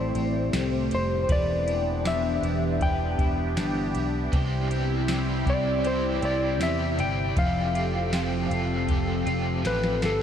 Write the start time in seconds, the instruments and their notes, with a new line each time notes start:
Already playing: fingered electric bass A1, clean electric guitar A2 G3 C4 E4, analog synth pad A3 C4 G4, electric slide guitar C5
0.15 fingered electric bass A1, clean electric guitar C4, ride
0.53 fingered electric bass C2, clean electric guitar G3, snare, ride, tambourine
0.91 fingered electric bass F1, clean electric guitar C4, electric slide guitar C5, ride
1.29 fingered electric bass E1, clean electric guitar E3 B4, analog synth pad E3 B3 D4, electric slide guitar D5, kick, ride
1.66 clean electric guitar E4, ride
2.05 clean electric guitar D4, electric slide guitar E5, snare, ride, tambourine
2.43 fingered electric bass E1, clean electric guitar E4, ride
2.81 clean electric guitar B4, electric slide guitar G5, kick, ride
3.19 fingered electric bass E1, clean electric guitar E4, kick, ride
3.56 fingered electric bass G1, clean electric guitar D4, snare, ride, tambourine
3.94 fingered electric bass B1, clean electric guitar E4, ride
4.32 fingered electric bass C2, overdriven electric guitar C3 E3 G3 C4 G4, clean electric guitar C3 C5, analog synth pad C3 C4 E4, kick, ride
4.69 overdriven electric guitar C4 G4, clean electric guitar E4, ride
4.75 overdriven electric guitar G3
5.07 overdriven electric guitar E3 G3, clean electric guitar C4, snare, ride, tambourine
5.11 overdriven electric guitar C4 G4
5.46 fingered electric bass C2, overdriven electric guitar C4 G4, clean electric guitar E4, electric slide guitar D5, kick, ride
5.51 overdriven electric guitar G3
5.84 overdriven electric guitar C3 E3 G3 C4 G4, clean electric guitar C5, electric slide guitar C5, ride
6.21 fingered electric bass C2, overdriven electric guitar C4 G4, clean electric guitar E4, electric slide guitar D5, ride
6.27 overdriven electric guitar G3
6.59 fingered electric bass E2, overdriven electric guitar E3 G3 C4, clean electric guitar C4, electric slide guitar E5, snare, ride, tambourine
6.64 overdriven electric guitar G4
6.98 fingered electric bass G1, overdriven electric guitar C4 G4, clean electric guitar E4, electric slide guitar G5, ride
7.03 overdriven electric guitar G3
7.36 fingered electric bass F1, overdriven electric guitar F3 A3 C4 G4, analog synth pad F3 C4 A4, clean electric guitar F3 A4, electric slide guitar F5, kick, ride
7.73 overdriven electric guitar C4 G4, clean electric guitar F4, ride
7.79 overdriven electric guitar A3
8.10 overdriven electric guitar F3 A3, clean electric guitar C4, snare, ride, tambourine
8.14 overdriven electric guitar C4 G4
8.49 fingered electric bass F1, overdriven electric guitar C4 G4, clean electric guitar F4, ride
8.55 overdriven electric guitar A3
8.87 overdriven electric guitar F3 A3 C4 G4, clean electric guitar G4, kick, ride
9.07 clean electric guitar A4
9.25 fingered electric bass F1, overdriven electric guitar C4 G4, clean electric guitar F4, ride
9.31 overdriven electric guitar A3
9.62 fingered electric bass A1, overdriven electric guitar F3 A3 C4, clean electric guitar C4, snare, ride
9.67 overdriven electric guitar G4, electric slide guitar B4
9.84 snare
10.01 fingered electric bass G1, overdriven electric guitar C4 G4, clean electric guitar F4, electric slide guitar A4, snare, ride
10.07 overdriven electric guitar A3